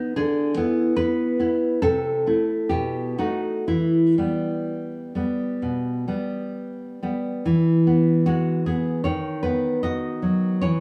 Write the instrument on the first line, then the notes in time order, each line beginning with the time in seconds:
nylon-string guitar
Already playing: B3 D#4
0.16 D3 G#4
0.57 B3 E4
0.96 B4
1.40 B3 E4
1.82 C3 A4
2.27 A3 E4
2.69 B2 G4
3.18 A3 D#4 F#4
3.68 E3 E4
4.18 G3 B3
5.15 G3 B3
5.62 B2
6.08 G3 B3
7.03 G3 B3
7.46 E3
7.87 B3
8.26 G#3 F#4
8.66 B3 G#4
9.04 D#3 C#5
9.43 B3 B4
9.83 F#4 D#5
10.22 F#3
10.61 E3 C#5